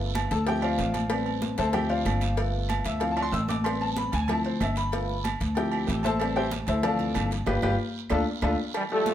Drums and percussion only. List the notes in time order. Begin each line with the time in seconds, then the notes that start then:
0.15 cowbell, high conga, low timbale, low agogo, short guiro, claves
0.31 cowbell, high conga, short guiro
0.46 cowbell, high conga, low agogo, long guiro
0.62 high conga, low agogo, claves
0.78 cowbell, high conga, low timbale, short guiro
0.94 cowbell, high conga, low agogo, short guiro
1.10 cowbell, high conga, low agogo, long guiro, claves
1.26 high conga, low agogo
1.42 cowbell, high conga, low timbale, short guiro
1.58 cowbell, low agogo, short guiro
1.73 cowbell, high conga, low conga, low agogo, long guiro, claves
1.89 high conga, low agogo
2.05 cowbell, high conga, low timbale, low agogo, short guiro, claves
2.21 cowbell, high conga, short guiro
2.37 cowbell, low agogo, long guiro
2.54 high conga
2.69 cowbell, high conga, low timbale, low agogo, short guiro, claves
2.85 cowbell, high conga, short guiro
3.00 cowbell, high conga, low agogo, long guiro
3.17 high conga, high timbale, low agogo, claves
3.33 cowbell, high conga, low timbale, short guiro
3.48 cowbell, high conga, low timbale, low agogo, short guiro
3.64 cowbell, low agogo, long guiro, claves
3.81 high conga, low agogo
3.96 cowbell, high conga, low timbale, short guiro
4.12 cowbell, high conga, low agogo, short guiro
4.28 cowbell, high conga, low conga, low agogo, long guiro, claves
4.44 high conga, low agogo
4.61 cowbell, high conga, low timbale, low agogo, short guiro, claves
4.76 cowbell, short guiro
4.92 cowbell, high conga, low agogo, long guiro
5.09 high conga
5.24 cowbell, high conga, low timbale, low agogo, short guiro, claves
5.40 cowbell, high conga, short guiro
5.55 cowbell, high conga, low agogo, long guiro
5.72 high conga, low agogo, claves
5.87 cowbell, high conga, low timbale, short guiro
6.03 cowbell, high conga, low agogo, short guiro
6.19 cowbell, high conga, low agogo, long guiro, claves
6.36 high conga, low agogo
6.51 cowbell, high conga, low timbale, short guiro
6.67 cowbell, high conga, low agogo, short guiro
6.83 cowbell, high conga, low conga, low agogo, long guiro, claves
6.99 high conga, low conga, low agogo
7.15 cowbell, high conga, low timbale, low agogo, short guiro, claves
7.31 cowbell, short guiro
7.46 cowbell, high conga, high timbale, long guiro, claves
7.62 cowbell, high conga, high timbale, long guiro, claves
8.10 cowbell, high conga, high timbale, long guiro, claves
8.42 cowbell, high conga, high timbale, long guiro, claves
8.74 cowbell, high conga, low agogo, long guiro, claves
8.90 high conga, low agogo
9.06 cowbell, high conga, low timbale, short guiro